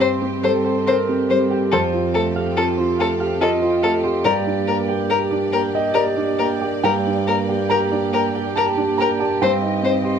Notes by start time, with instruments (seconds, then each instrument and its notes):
Already playing: grand piano G2 G3 C4 G4 D#5, string section C4 G4 C5, harp G4 C5 G5
0.00 harp C4, violin C5
0.21 grand piano C4, harp G4
0.43 grand piano G3 A4, harp C5, violin C5
0.64 grand piano G4, harp C5
0.86 harp C4, grand piano A#4, violin C5
1.08 grand piano C4, harp G4
1.29 grand piano G3, harp C5, violin C5
1.50 harp G4, grand piano G4
1.72 grand piano F2 C5, harp F4, string section G4 A4, violin A4
1.94 grand piano F4
2.14 grand piano A3, violin A4
2.36 grand piano G4, harp F5
2.57 harp F4, violin A4
2.77 grand piano F4, harp C5
2.99 grand piano A3, violin A4, harp F5
3.20 grand piano G4, harp F5
3.41 harp F4, violin A4, grand piano D#5
3.62 grand piano F4, harp C5
3.83 grand piano A3, violin A4, harp F5
4.03 grand piano G4, harp C5
4.24 grand piano G2 D5, string section A#3 D5, harp G4, violin A#4
4.47 grand piano D4
4.67 grand piano A#3, violin A#4
4.88 grand piano G4, harp G5
5.09 harp G4, violin A#4
5.31 grand piano D4, harp D5
5.52 grand piano A#3, violin A#4, harp G5
5.73 grand piano G4 D#5, harp G5
5.94 harp G4, violin A#4, grand piano D5
6.16 grand piano D4, harp D5
6.39 grand piano A#3, violin A#4, harp G5
6.61 grand piano G4, harp D5
6.83 grand piano G2 G5, harp G4, string section G4, violin A#4
7.07 grand piano D4
7.27 grand piano A#3, violin A#4
7.49 grand piano G4, harp G5
7.70 harp G4, violin A#4, grand piano A#5
7.92 grand piano D4, harp D5
8.13 grand piano A#3, violin A#4, harp G5
8.35 grand piano G4, harp G5
8.56 harp G4, violin A#4, grand piano A5
8.77 grand piano D4, harp D5
8.98 grand piano A#3 A#5, violin A#4, harp G5
9.20 grand piano G4 A5, harp D5
9.41 grand piano G2 G5, string section C4 D#5, harp C4, violin C5
9.62 grand piano D#4
9.83 grand piano C4, violin C5
10.04 grand piano G4, harp C5